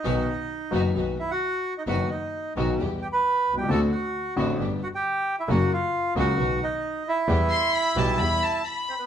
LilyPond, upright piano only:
\new Staff \with { instrumentName = "Upright piano" } { \clef bass \time 4/4 \key e \minor \tempo 4 = 133 <b,, b, dis fis b fis'>8 r4 <fis,, fis, dis fis b fis'>8 <b,, b, dis fis b fis'>8 r4. | <fis,, fis, dis fis b fis'>8 r4 <b,, b, dis fis b fis'>8 <e, e g b g'>8 r4 r32 b,,32 c,32 cis,32 | <d, d a c' fis'>8 r4 <a,, a, d a c' fis'>8 <g,, g, d g b g'>8 r4. | <fis, cis fis ais fis'>8 r4 <cis, cis fis ais fis'>8 <b,, b, dis fis b fis'>8 r4. |
<e, e g b g'>8 r4 <b,, b, e g b g'>8 <e, e g b g'>8 r4. | }